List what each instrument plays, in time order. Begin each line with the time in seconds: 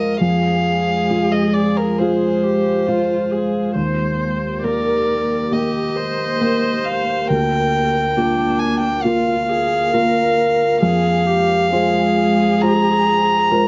Already playing: ambient pad G#3 F4 C5, felt piano G#3 F4 F5, viola A#4, violin D#5
0.20 felt piano F2, ambient pad G#3 F4 C5, viola G#4, violin F5
1.11 felt piano G#3 F4 F5
1.32 violin D#5
1.53 violin D5
1.77 violin A#4
1.99 felt piano G#3 F4 F5, viola G#4, violin C5
2.43 viola G4
2.87 felt piano G#3 F4 F5, viola F4
3.31 viola G#4
3.75 felt piano D#2, ambient pad A#3 G4 A#4, viola C5
4.63 felt piano A#3 G4 A#4, viola A#4, violin D5
5.52 felt piano A#3 G4 A#4, viola G4, violin D#5
5.96 viola C5
6.41 felt piano A#3 G4 A#4
6.84 violin F5
7.28 felt piano D2, ambient pad A#3 F4 A#4, viola A#4, violin G5
8.17 felt piano A#3 F4 A#4, viola D4
8.59 violin G#5
8.80 violin G5
9.03 felt piano A#3 F4 A#4, viola F4, violin F5
9.49 viola G#4
9.93 felt piano A#3 F4 A#4, viola A#4
10.81 felt piano F2, ambient pad G#3 F4 C5, viola G#4, violin F5
11.27 viola G4
11.71 felt piano G#3 F4 C5, viola G#4
12.62 felt piano G#3 F4 C5, violin A#5
13.51 felt piano G#3 F4 C5, viola A#4